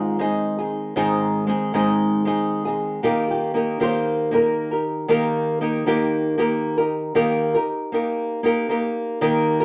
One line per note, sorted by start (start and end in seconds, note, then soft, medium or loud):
0.00 0.19 G#2 medium
0.00 0.96 D#3 medium
0.00 0.18 G#3 medium
0.00 0.18 C4 medium
0.00 0.20 D#4 medium
0.00 0.20 F4 medium
0.00 0.20 G#4 medium
0.19 0.59 G#3 medium
0.19 0.59 C4 medium
0.19 0.58 D#4 medium
0.19 0.57 G#4 medium
0.59 0.95 G#3 soft
0.59 0.96 C4 soft
0.59 0.95 D#4 soft
0.59 0.96 G#4 soft
0.96 1.48 G#2 medium
0.96 1.74 D#3 medium
0.96 1.46 G#3 medium
0.96 1.47 C4 medium
0.96 1.48 D#4 medium
0.96 1.48 G#4 loud
1.47 1.73 G#3 medium
1.47 1.74 C4 medium
1.47 1.73 D#4 medium
1.47 1.74 G#4 medium
1.74 2.26 G#2 medium
1.74 3.02 D#3 medium
1.74 2.24 G#3 medium
1.74 2.25 C4 medium
1.74 2.27 D#4 medium
1.74 2.26 G#4 medium
2.25 2.66 G#3 medium
2.25 2.66 C4 medium
2.25 2.65 D#4 medium
2.25 2.64 G#4 medium
2.65 3.03 G#3 soft
2.65 3.04 C4 soft
2.65 3.03 D#4 soft
2.65 3.03 G#4 soft
3.03 3.79 D#3 medium
3.03 3.54 A#3 medium
3.03 3.55 D#4 medium
3.03 3.55 G4 medium
3.03 3.56 A#4 medium
3.31 3.82 G4 medium
3.54 3.79 A#3 medium
3.54 3.80 D#4 medium
3.54 3.80 G4 medium
3.54 3.80 A#4 medium
3.80 5.08 D#3 medium
3.80 4.31 A#3 medium
3.80 4.31 D#4 medium
3.80 4.33 G4 medium
3.80 4.33 A#4 medium
3.80 4.34 C5 loud
4.31 4.72 A#3 medium
4.31 4.72 D#4 medium
4.31 4.71 G4 medium
4.31 4.70 A#4 medium
4.71 5.08 D#4 soft
4.71 5.09 G4 soft
4.71 5.09 A#4 soft
5.08 5.86 D#3 medium
5.08 5.60 A#3 medium
5.08 5.61 D#4 loud
5.08 5.62 G4 medium
5.08 5.62 A#4 medium
5.61 5.86 A#3 medium
5.61 5.86 D#4 medium
5.61 5.86 G4 medium
5.61 5.86 A#4 medium
5.86 7.14 D#3 medium
5.86 6.37 A#3 medium
5.86 6.38 D#4 medium
5.86 6.38 G4 loud
5.86 6.39 A#4 medium
6.38 6.78 A#3 medium
6.38 6.78 D#4 medium
6.38 6.78 G4 medium
6.38 6.76 A#4 medium
6.78 7.14 D#4 soft
6.78 7.14 G4 soft
6.78 7.15 A#4 medium
7.15 7.55 D#3 medium
7.15 7.55 A#3 medium
7.15 7.56 D#4 medium
7.15 7.54 G4 medium
7.15 7.53 A#4 loud
7.55 7.92 D#4 soft
7.55 7.93 G4 medium
7.55 7.92 A#4 medium
7.92 8.42 A#3 medium
7.92 8.44 D#4 medium
7.92 8.44 G4 medium
7.92 8.44 A#4 medium
8.43 8.68 A#3 medium
8.43 8.68 D#4 medium
8.43 8.69 G4 medium
8.43 8.70 A#4 medium
8.69 9.20 A#3 medium
8.69 9.21 D#4 medium
8.69 9.21 G4 medium
8.69 9.21 A#4 medium
9.21 9.61 D#3 medium
9.21 9.62 A#3 medium
9.21 9.62 D#4 medium
9.21 9.60 G4 medium
9.21 9.59 A#4 medium
9.60 9.65 G4 medium
9.60 9.65 A#4 medium